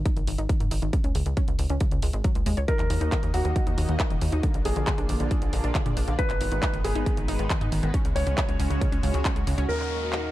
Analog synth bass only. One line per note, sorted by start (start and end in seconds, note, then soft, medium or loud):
0.16 0.25 G#1 medium
0.28 0.36 G#1 medium
0.38 0.47 G#1 medium
0.60 0.69 G#2 medium
0.71 0.80 G#1 loud
0.82 0.91 G#1 medium
1.04 1.13 C#2 medium
1.15 1.24 C#2 medium
1.26 1.35 C#2 medium
1.48 1.57 C#2 medium
1.59 1.68 C#2 medium
1.70 1.78 C#2 medium
1.92 2.00 C#2 medium
2.02 2.11 C#2 medium
2.13 2.22 G#1 medium
2.35 2.44 C#2 medium
2.46 2.55 D#2 medium
2.57 2.66 C#2 medium
2.79 2.88 D#2 medium
2.90 2.99 D#2 loud
3.01 3.10 D#2 medium
3.23 3.32 D#2 medium
3.34 3.43 D#2 medium
3.45 3.54 D#2 medium
3.67 3.76 D#2 medium
3.78 3.87 D#2 loud
3.89 3.97 D#2 medium
4.11 4.19 D#1 medium
4.21 4.30 D#2 loud
4.33 4.41 D#2 medium
4.54 4.63 A#1 medium
4.65 4.74 A#1 loud
4.76 4.85 A#1 medium
4.98 5.07 A#1 medium
5.09 5.18 A#1 loud
5.20 5.29 A#1 medium
5.42 5.51 A#1 medium
5.53 5.62 A#1 medium
5.64 5.73 A#1 medium
5.86 5.95 A#2 medium
5.97 6.05 A#1 loud
6.08 6.16 A#1 medium
6.30 6.38 G#1 medium
6.41 6.49 G#1 loud
6.51 6.60 G#1 medium
6.73 6.82 G#1 medium
6.84 6.93 G#1 loud
6.95 7.04 G#1 medium
7.17 7.26 G#1 medium
7.28 7.37 G#1 loud
7.39 7.48 G#1 medium
7.61 7.70 G#2 medium
7.72 7.81 G#1 medium
7.83 7.92 G#1 medium
8.05 8.14 C#2 medium
8.16 8.25 C#2 loud
8.27 8.35 C#2 medium
8.49 8.57 C#2 medium
8.60 8.68 C#2 loud
8.71 8.79 C#2 medium
8.92 9.01 C#2 medium
9.03 9.12 C#2 medium
9.14 9.23 C#2 medium
9.36 9.45 C#2 medium
9.47 9.56 C#2 loud
9.58 9.67 C#2 medium
9.69 10.31 D#2 medium